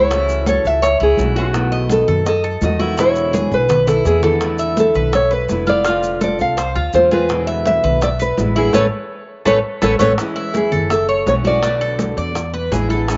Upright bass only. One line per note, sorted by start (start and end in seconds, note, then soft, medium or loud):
0.00 0.59 C#2 medium
0.65 0.98 C#2 loud
1.01 1.17 C#2 medium
1.19 2.03 B1 loud
2.08 2.58 F#2 medium
2.62 3.46 E2 medium
3.52 4.02 B1 loud
4.05 4.90 E2 medium
4.95 5.46 B1 medium
5.49 6.34 F1 medium
6.39 6.73 C2 medium
6.76 6.92 D2 medium
6.94 7.78 E2 medium
7.84 8.34 B1 medium
8.37 8.71 A1 loud
8.74 8.87 A1 loud
9.46 9.60 A1 medium
9.82 9.96 A1 medium
10.00 10.14 A1 loud
10.72 11.23 F#1 loud
11.27 12.11 B1 medium
12.17 12.68 E2 loud
12.72 13.17 A1 medium